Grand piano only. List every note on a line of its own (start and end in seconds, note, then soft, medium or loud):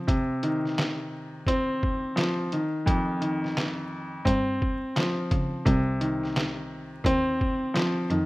0.00 0.10 C4 loud
0.07 1.82 C3 medium
0.43 2.17 D#3 medium
1.48 2.52 C4 loud
2.16 2.51 F3 medium
2.53 3.19 D#3 medium
2.86 4.26 F2 medium
3.21 4.26 D#3 medium
4.25 5.65 C4 loud
4.96 5.66 F3 medium
5.65 7.40 C3 medium
6.01 7.75 D#3 medium
7.06 8.10 C4 loud
7.74 8.10 F3 medium
8.11 8.26 D#3 medium